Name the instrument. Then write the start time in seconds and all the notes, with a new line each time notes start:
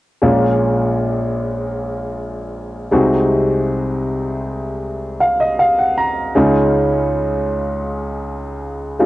grand piano
0.22 A#1 A#2 G#3 A#3 C#4 F4
2.91 C2 C3 G#3 C4 D#4 F#4
5.20 F5
5.40 D#5
5.59 F5
5.79 F#5
5.98 A#5
6.35 C#2 C#3 G#3 C#4 D#4 F4
8.99 G#3 C#4 D#4 F4